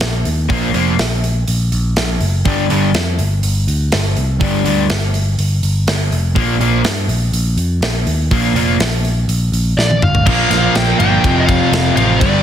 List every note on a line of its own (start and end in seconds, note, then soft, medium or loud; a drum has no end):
0.01 0.23 A#1 medium
0.01 snare loud
0.01 open hi-hat medium
0.25 0.48 D#2 medium
0.25 open hi-hat medium
0.49 0.72 A#1 medium
0.49 0.69 A#2 medium
0.49 0.69 F3 medium
0.49 0.69 A#3 medium
0.49 kick loud
0.49 open hi-hat medium
0.74 0.96 F1 medium
0.74 0.93 A#2 medium
0.74 0.94 F3 medium
0.74 0.94 A#3 medium
0.74 open hi-hat soft
0.98 1.43 A#1 medium
0.98 snare loud
0.98 open hi-hat medium
1.24 open hi-hat soft
1.48 1.70 A#1 medium
1.48 open hi-hat medium
1.72 1.94 A#1 medium
1.72 open hi-hat soft
1.96 2.19 A#1 medium
1.96 snare medium
1.96 open hi-hat medium
2.21 2.43 F#1 medium
2.21 open hi-hat soft
2.45 2.67 G1 medium
2.45 2.65 G2 medium
2.45 2.65 D3 medium
2.45 2.65 G3 loud
2.45 kick loud
2.45 open hi-hat medium
2.70 2.92 G1 medium
2.70 2.89 G2 medium
2.70 2.89 D3 loud
2.70 2.90 G3 medium
2.70 open hi-hat soft
2.94 3.16 F2 medium
2.94 snare loud
2.94 open hi-hat medium
3.19 3.41 G1 medium
3.19 open hi-hat medium
3.43 3.65 G1 medium
3.43 open hi-hat medium
3.67 3.90 D2 medium
3.67 open hi-hat medium
3.92 4.14 G1 medium
3.92 snare loud
3.92 open hi-hat medium
4.17 4.39 C2 medium
4.17 open hi-hat soft
4.41 4.63 G1 medium
4.41 4.60 G2 medium
4.41 4.61 D3 medium
4.41 4.61 G3 loud
4.41 kick loud
4.41 open hi-hat medium
4.65 4.88 D2 medium
4.65 4.84 G2 medium
4.65 4.85 D3 medium
4.65 4.85 G3 medium
4.65 open hi-hat medium
4.90 5.35 G1 medium
4.90 snare loud
4.90 open hi-hat medium
5.14 open hi-hat medium
5.38 5.61 G1 medium
5.38 open hi-hat medium
5.63 5.85 G1 medium
5.63 open hi-hat medium
5.87 6.09 G1 medium
5.87 snare loud
5.87 open hi-hat medium
6.11 6.33 F1 medium
6.11 open hi-hat soft
6.36 6.58 A#1 medium
6.36 6.55 A#2 medium
6.36 6.56 F3 medium
6.36 6.56 A#3 loud
6.36 kick loud
6.36 open hi-hat medium
6.60 6.83 A#1 medium
6.60 6.80 A#2 medium
6.60 6.80 F3 medium
6.60 6.81 A#3 loud
6.60 open hi-hat medium
6.84 7.07 G2 medium
6.84 snare loud
6.84 open hi-hat medium
7.08 7.31 A#1 medium
7.08 open hi-hat soft
7.32 7.55 A#1 medium
7.32 open hi-hat medium
7.56 7.79 F2 medium
7.56 open hi-hat soft
7.81 8.04 A#1 medium
7.81 snare loud
7.81 open hi-hat medium
8.06 8.28 D#2 medium
8.06 open hi-hat soft
8.31 8.53 A#1 medium
8.31 8.51 A#2 medium
8.31 8.51 F3 medium
8.31 8.51 A#3 medium
8.31 kick loud
8.31 open hi-hat medium
8.54 8.77 F1 medium
8.54 8.75 A#2 medium
8.54 8.75 F3 medium
8.54 8.76 A#3 loud
8.54 open hi-hat medium
8.79 9.24 A#1 medium
8.79 snare loud
8.79 open hi-hat medium
9.05 open hi-hat medium
9.28 9.50 A#1 medium
9.28 open hi-hat medium
9.52 9.75 A#1 medium
9.52 open hi-hat medium
9.77 9.99 A#1 medium
9.77 10.03 D5 medium
9.77 snare medium
9.91 high tom medium
10.02 10.24 G1 medium
10.02 10.49 F5 medium
10.02 mid tom medium
10.15 floor tom medium
10.26 10.44 A#1 medium
10.26 10.98 A#2 medium
10.26 10.99 F3 medium
10.26 10.98 A#3 loud
10.26 kick loud
10.26 crash loud
10.50 10.68 A#1 medium
10.50 10.76 F5 loud
10.50 snare soft
10.50 ride medium
10.75 10.92 A#1 medium
10.75 10.98 G5 loud
10.75 snare loud
10.75 ride loud
10.99 11.16 G1 medium
10.99 11.23 A#2 medium
10.99 11.23 F3 medium
10.99 11.22 A#3 medium
10.99 11.42 G5 loud
10.99 ride medium
11.23 11.58 F1 medium
11.23 11.95 F2 medium
11.23 11.96 C3 medium
11.23 11.96 F3 medium
11.23 kick medium
11.23 ride medium
11.40 11.46 D#5 medium
11.46 11.92 F5 loud
11.46 kick medium
11.46 ride medium
11.72 11.89 F1 medium
11.72 snare loud
11.72 ride loud
11.96 12.21 A1 medium
11.96 12.21 F2 medium
11.96 12.20 C3 medium
11.96 12.20 F3 medium
11.96 12.20 F5 loud
11.96 ride medium
12.20 12.38 G1 medium
12.20 12.43 G2 loud
12.20 12.43 D3 loud
12.20 12.43 G3 loud
12.20 12.43 D5 medium
12.20 kick loud
12.20 ride loud